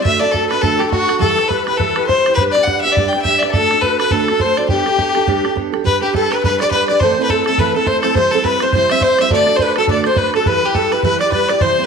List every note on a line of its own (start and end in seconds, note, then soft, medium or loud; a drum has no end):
0.03 0.23 D3 medium
0.03 0.23 A3 medium
0.03 0.22 D4 medium
0.03 0.21 F#4 medium
0.03 0.20 A4 medium
0.03 0.21 E5 loud
0.03 0.24 E5 medium
0.03 bodhran medium
0.20 0.33 D4 soft
0.20 0.33 F#4 soft
0.20 0.35 A4 soft
0.20 0.33 D5 medium
0.20 0.34 D5 medium
0.31 0.51 A3 medium
0.31 0.52 D4 medium
0.31 0.51 F#4 medium
0.31 0.48 A4 medium
0.31 0.51 A4 medium
0.31 bodhran medium
0.36 0.50 A4 medium
0.49 0.63 F#4 soft
0.49 0.63 A4 medium
0.49 0.63 B4 medium
0.49 0.64 B4 medium
0.49 bodhran medium
0.53 0.62 D4 soft
0.61 0.80 D3 medium
0.61 0.81 A3 medium
0.61 0.80 D4 medium
0.61 0.79 F#4 medium
0.61 0.81 A4 medium
0.61 0.94 A4 medium
0.61 0.77 A4 medium
0.61 bodhran medium
0.72 bodhran soft
0.79 0.91 D4 soft
0.79 0.92 F#4 soft
0.79 0.90 G4 medium
0.79 0.92 A4 soft
0.79 bodhran medium
0.91 1.09 A3 soft
0.91 1.09 D4 medium
0.91 1.19 F#4 medium
0.91 1.23 F#4 medium
0.91 1.08 F#4 medium
0.91 1.07 A4 medium
0.91 bodhran medium
1.08 1.19 D4 soft
1.08 1.20 F#4 soft
1.08 1.20 A4 soft
1.08 bodhran medium
1.19 1.38 E3 medium
1.19 1.38 G3 medium
1.19 1.38 E4 medium
1.19 1.37 G4 medium
1.19 1.49 A4 medium
1.19 1.52 A4 medium
1.19 1.35 B4 medium
1.19 bodhran medium
1.36 1.49 E4 soft
1.36 1.50 G4 soft
1.36 1.50 B4 medium
1.36 bodhran medium
1.48 1.67 G3 medium
1.48 1.67 E4 medium
1.48 1.66 G4 medium
1.48 1.65 B4 medium
1.48 bodhran medium
1.65 1.79 E4 soft
1.65 1.79 G4 soft
1.65 1.79 B4 medium
1.65 1.79 B4 soft
1.65 1.80 B4 medium
1.65 bodhran medium
1.78 1.97 E3 medium
1.78 1.97 G3 medium
1.78 1.97 E4 medium
1.78 1.97 G4 medium
1.78 2.06 A4 medium
1.78 1.97 A4 medium
1.78 1.96 B4 medium
1.78 bodhran medium
1.89 bodhran soft
1.95 2.09 E4 soft
1.95 2.10 G4 soft
1.95 2.09 B4 medium
1.95 2.10 B4 soft
1.95 bodhran medium
2.07 2.26 G3 medium
2.07 2.27 E4 medium
2.07 2.34 C5 loud
2.07 2.39 C5 medium
2.07 bodhran medium
2.11 2.27 G4 medium
2.11 2.26 B4 medium
2.26 2.40 E4 soft
2.26 2.40 G4 soft
2.26 2.39 B4 medium
2.26 bodhran medium
2.34 2.43 B4 loud
2.34 2.55 B4 medium
2.34 bodhran medium
2.40 2.56 G3 medium
2.40 2.56 D4 medium
2.40 2.56 G4 medium
2.40 2.55 B4 medium
2.51 2.65 D5 loud
2.51 2.66 D5 medium
2.51 bodhran medium
2.57 2.67 D4 soft
2.57 2.67 G4 soft
2.57 2.68 B4 soft
2.63 2.84 G3 medium
2.63 2.80 F#5 medium
2.63 2.84 F#5 medium
2.63 bodhran medium
2.68 2.84 D4 medium
2.68 2.85 G4 medium
2.68 2.84 B4 medium
2.81 2.97 B4 soft
2.81 2.93 E5 loud
2.81 2.96 E5 medium
2.86 2.97 D4 soft
2.86 2.97 G4 soft
2.92 3.09 D5 medium
2.97 3.13 G3 medium
2.97 3.14 D4 medium
2.97 3.14 G4 medium
2.97 3.13 B4 loud
2.97 3.13 D5 medium
2.97 bodhran medium
3.05 3.21 G5 medium
3.05 bodhran soft
3.13 3.25 D4 soft
3.13 3.26 G4 soft
3.13 3.26 B4 soft
3.13 3.25 G5 medium
3.13 bodhran medium
3.22 3.40 E5 loud
3.22 bodhran medium
3.26 3.42 G3 medium
3.26 3.43 D4 medium
3.26 3.43 G4 medium
3.26 3.42 B4 medium
3.26 3.43 E5 medium
3.39 3.50 D5 medium
3.39 bodhran medium
3.43 3.54 D4 soft
3.43 3.55 G4 soft
3.43 3.55 B4 soft
3.43 3.55 D5 medium
3.51 3.71 D3 medium
3.51 3.83 A4 loud
3.51 bodhran medium
3.55 3.71 A3 medium
3.55 3.72 D4 medium
3.55 3.71 F#4 medium
3.55 3.70 A4 medium
3.55 3.85 A4 medium
3.71 3.83 D4 soft
3.71 3.84 F#4 soft
3.71 3.84 A4 soft
3.71 bodhran medium
3.81 4.00 A3 medium
3.81 4.00 D4 medium
3.81 4.00 F#4 medium
3.81 3.99 A4 medium
3.81 3.98 B4 medium
3.81 3.99 B4 medium
3.81 bodhran medium
3.99 4.11 D4 soft
3.99 4.11 F#4 soft
3.99 4.12 A4 soft
3.99 4.13 B4 medium
3.99 bodhran medium
4.11 4.28 D3 medium
4.11 4.29 A3 medium
4.11 4.29 D4 medium
4.11 4.29 F#4 medium
4.11 4.42 A4 medium
4.11 4.21 A4 medium
4.11 4.28 A4 medium
4.11 bodhran medium
4.21 4.29 A4 medium
4.21 bodhran soft
4.28 4.41 D4 soft
4.28 4.41 F#4 soft
4.28 4.41 A4 medium
4.28 bodhran medium
4.40 4.58 A3 medium
4.40 4.58 D4 medium
4.40 4.57 F#4 medium
4.40 4.56 A4 medium
4.40 4.56 C5 medium
4.40 4.59 C5 loud
4.40 bodhran medium
4.57 4.69 D4 soft
4.57 4.70 F#4 soft
4.57 4.69 A4 medium
4.57 4.68 D5 medium
4.57 4.64 D5 medium
4.57 bodhran medium
4.69 4.87 G3 medium
4.69 4.87 B3 medium
4.69 4.86 D4 medium
4.69 5.52 G4 medium
4.69 4.85 G4 medium
4.69 5.54 G4 medium
4.69 4.84 A4 medium
4.69 bodhran medium
4.86 4.97 D4 soft
4.86 4.98 G4 soft
4.86 4.98 A4 soft
4.86 bodhran medium
4.98 5.15 B3 medium
4.98 5.15 D4 medium
4.98 5.15 G4 medium
4.98 5.14 A4 medium
4.98 bodhran medium
5.15 5.27 D4 soft
5.15 5.27 G4 soft
5.15 5.28 A4 medium
5.15 bodhran medium
5.27 5.44 G3 medium
5.27 5.44 B3 medium
5.27 5.44 D4 medium
5.27 5.44 G4 loud
5.27 5.42 A4 medium
5.27 bodhran medium
5.36 bodhran soft
5.44 5.55 D4 soft
5.44 5.56 G4 soft
5.44 5.56 A4 medium
5.44 bodhran medium
5.55 5.73 B3 medium
5.55 5.73 D4 medium
5.55 5.72 G4 medium
5.55 5.71 A4 medium
5.55 bodhran medium
5.72 5.83 D4 soft
5.72 5.84 G4 medium
5.72 5.85 A4 medium
5.72 bodhran medium
5.84 6.01 G3 medium
5.84 6.01 D4 medium
5.84 6.01 G4 medium
5.84 6.00 B4 medium
5.84 6.01 B4 loud
5.84 6.03 B4 medium
5.84 6.02 B4 medium
5.84 bodhran medium
6.01 6.13 D4 soft
6.01 6.13 G4 medium
6.01 6.13 G4 soft
6.01 6.14 G4 medium
6.01 6.14 B4 soft
6.13 6.31 G3 medium
6.13 6.31 D4 soft
6.13 6.31 G4 medium
6.13 6.33 A4 medium
6.13 6.31 A4 medium
6.13 6.29 B4 medium
6.13 bodhran medium
6.31 6.43 D4 soft
6.31 6.44 G4 soft
6.31 6.43 B4 soft
6.31 6.43 B4 medium
6.31 6.42 B4 medium
6.31 6.43 B4 medium
6.31 bodhran medium
6.43 6.60 G3 medium
6.43 6.60 D4 medium
6.43 6.60 G4 medium
6.43 6.59 B4 loud
6.43 6.61 B4 medium
6.43 6.60 B4 medium
6.43 6.59 B4 medium
6.43 bodhran medium
6.59 6.72 D4 soft
6.59 6.73 G4 soft
6.59 6.72 B4 soft
6.59 6.72 D5 medium
6.59 6.70 D5 loud
6.59 6.72 D5 medium
6.59 bodhran medium
6.71 6.89 G3 medium
6.71 6.89 D4 medium
6.71 6.89 G4 medium
6.71 6.89 B4 medium
6.71 6.87 B4 loud
6.71 6.88 B4 medium
6.71 bodhran medium
6.75 6.91 B4 medium
6.87 7.01 D4 soft
6.87 7.02 G4 medium
6.87 7.01 B4 soft
6.87 7.01 D5 medium
6.87 7.02 D5 medium
6.87 bodhran medium
7.00 7.17 A2 medium
7.00 7.18 E3 medium
7.00 7.18 A3 medium
7.00 7.18 C4 medium
7.00 7.18 E4 medium
7.00 7.17 A4 medium
7.00 7.22 C5 loud
7.00 7.24 C5 medium
7.00 7.29 C5 medium
7.00 bodhran medium
7.18 7.29 A3 soft
7.18 7.30 C4 soft
7.18 7.30 E4 soft
7.18 7.30 A4 soft
7.23 7.32 B4 medium
7.23 7.30 B4 medium
7.30 7.47 A3 medium
7.30 7.47 C4 medium
7.30 7.47 E4 medium
7.30 7.45 A4 medium
7.30 7.47 A4 medium
7.30 7.46 A4 medium
7.30 bodhran medium
7.45 7.58 C4 soft
7.45 7.59 E4 soft
7.45 7.61 A4 loud
7.45 7.59 A4 soft
7.45 7.58 A4 medium
7.45 7.59 A4 medium
7.45 bodhran medium
7.50 7.58 A3 soft
7.58 7.75 A2 medium
7.58 7.75 E3 medium
7.58 7.75 A3 medium
7.58 7.75 C4 medium
7.58 7.74 E4 medium
7.58 7.73 A4 medium
7.58 7.74 B4 medium
7.58 7.76 B4 medium
7.58 7.75 B4 medium
7.58 bodhran medium
7.75 7.85 A3 soft
7.75 7.86 C4 soft
7.75 7.87 E4 soft
7.75 7.87 A4 soft
7.75 7.88 A4 medium
7.75 7.87 A4 medium
7.75 7.85 A4 medium
7.86 8.03 A3 medium
7.86 8.03 C4 medium
7.86 8.02 E4 medium
7.86 8.02 A4 medium
7.86 8.01 C5 loud
7.86 8.03 C5 medium
7.86 7.89 D5 medium
7.86 bodhran medium
7.91 8.06 C5 medium
8.02 8.15 A3 soft
8.02 8.15 C4 soft
8.02 8.15 E4 medium
8.02 8.16 A4 medium
8.02 bodhran medium
8.06 8.18 A4 medium
8.14 8.32 C3 medium
8.14 8.33 E3 medium
8.14 8.33 G3 medium
8.14 8.33 C4 medium
8.14 8.33 E4 medium
8.14 8.32 C5 loud
8.14 8.32 C5 medium
8.14 bodhran medium
8.19 8.35 C5 medium
8.31 8.43 C4 soft
8.31 8.44 E4 soft
8.31 8.45 A4 medium
8.31 8.45 C5 medium
8.35 8.43 G3 soft
8.35 8.47 A4 medium
8.43 8.61 G3 medium
8.43 8.61 C4 medium
8.43 8.60 E4 medium
8.43 8.64 B4 loud
8.43 8.62 B4 medium
8.43 8.61 B4 medium
8.43 8.59 C5 medium
8.43 bodhran medium
8.60 8.73 G3 soft
8.60 8.74 C4 soft
8.60 8.73 E4 soft
8.60 8.73 C5 medium
8.60 8.74 C5 medium
8.60 bodhran medium
8.64 8.74 C5 medium
8.73 8.90 C3 medium
8.73 8.91 E3 medium
8.73 8.91 G3 medium
8.73 8.91 C4 medium
8.73 8.91 E4 medium
8.73 8.89 C5 medium
8.73 8.93 C5 loud
8.73 8.90 C5 medium
8.73 8.92 C5 medium
8.73 bodhran medium
8.90 9.01 G3 soft
8.90 9.01 C4 soft
8.90 9.02 E4 soft
8.90 9.02 E5 medium
8.90 9.04 E5 loud
8.90 9.02 E5 medium
8.90 bodhran medium
9.01 9.19 G3 medium
9.01 9.19 C4 medium
9.01 9.18 E4 medium
9.01 9.23 C5 loud
9.01 9.20 C5 medium
9.01 9.19 C5 medium
9.01 9.18 C5 medium
9.01 bodhran medium
9.19 9.31 G3 soft
9.19 9.30 C4 soft
9.19 9.30 E4 medium
9.19 9.31 C5 medium
9.19 9.31 E5 medium
9.19 9.32 E5 medium
9.19 bodhran medium
9.30 9.47 D3 medium
9.30 9.48 A3 medium
9.30 9.48 D4 medium
9.30 9.47 F#4 medium
9.30 9.45 A4 medium
9.30 9.53 D5 medium
9.30 9.58 D5 loud
9.30 bodhran medium
9.35 9.55 D5 medium
9.46 9.58 D4 soft
9.46 9.59 F#4 soft
9.46 9.59 A4 medium
9.46 bodhran medium
9.55 9.76 A3 medium
9.55 9.60 C5 medium
9.55 9.61 C5 medium
9.55 9.63 C5 medium
9.55 bodhran medium
9.60 9.77 D4 medium
9.60 9.77 F#4 medium
9.60 9.75 A4 medium
9.60 9.77 B4 medium
9.60 9.78 B4 medium
9.76 9.88 D4 soft
9.76 9.88 F#4 medium
9.76 9.88 A4 soft
9.76 9.88 A4 medium
9.76 9.90 A4 medium
9.76 9.89 A4 medium
9.76 bodhran medium
9.88 10.05 D3 medium
9.88 10.06 A3 medium
9.88 10.06 D4 medium
9.88 10.06 F#4 medium
9.88 10.05 A4 medium
9.88 10.06 D5 medium
9.88 10.05 D5 medium
9.88 bodhran medium
10.04 10.18 A4 soft
10.04 10.17 C5 medium
10.04 10.19 C5 medium
10.04 10.17 C5 medium
10.04 bodhran medium
10.08 10.18 D4 soft
10.16 10.35 A3 medium
10.16 10.35 D4 medium
10.16 10.34 F#4 medium
10.16 10.33 A4 medium
10.16 10.35 B4 medium
10.16 10.34 B4 medium
10.16 bodhran medium
10.34 10.46 D4 soft
10.34 10.47 F#4 soft
10.34 10.47 A4 soft
10.34 10.46 A4 medium
10.34 10.48 A4 medium
10.34 10.46 A4 medium
10.34 bodhran medium
10.46 10.63 E3 medium
10.46 10.64 G3 medium
10.46 10.63 E4 medium
10.46 10.63 G4 medium
10.46 10.73 B4 medium
10.46 10.62 B4 medium
10.46 10.67 B4 medium
10.46 10.62 B4 medium
10.46 bodhran medium
10.65 10.75 E4 soft
10.65 10.76 G4 medium
10.75 10.92 G3 medium
10.75 10.93 E4 medium
10.75 10.92 G4 medium
10.75 10.93 A4 medium
10.75 10.91 A4 medium
10.75 10.93 A4 medium
10.75 10.91 B4 medium
10.75 bodhran medium
10.92 11.03 E4 soft
10.92 11.03 G4 soft
10.92 11.04 B4 medium
10.92 11.03 B4 medium
10.92 11.04 B4 medium
10.92 bodhran medium
11.03 11.21 E3 medium
11.03 11.21 G3 medium
11.03 11.21 E4 medium
11.03 11.21 G4 medium
11.03 11.19 B4 medium
11.03 11.20 B4 medium
11.03 bodhran medium
11.20 11.34 E4 soft
11.20 11.34 G4 soft
11.20 11.33 B4 soft
11.20 11.31 D5 medium
11.20 11.32 D5 medium
11.20 11.34 D5 medium
11.20 bodhran medium
11.32 11.50 G3 medium
11.32 11.51 E4 medium
11.32 11.50 G4 medium
11.32 11.50 B4 medium
11.32 11.48 B4 medium
11.32 11.51 B4 medium
11.32 bodhran medium
11.36 11.48 B4 medium
11.49 11.62 E4 soft
11.49 11.62 G4 medium
11.49 11.62 B4 medium
11.49 11.62 D5 medium
11.49 11.61 D5 medium
11.49 bodhran medium
11.61 11.78 C3 medium
11.61 11.79 E3 medium
11.61 11.79 G3 medium
11.61 11.78 C4 medium
11.61 11.78 E4 medium
11.61 11.85 C5 loud
11.61 11.83 C5 medium
11.61 11.86 C5 medium
11.61 11.77 C5 medium
11.61 bodhran medium
11.79 11.86 G3 soft
11.79 11.86 C4 soft
11.79 11.86 E4 soft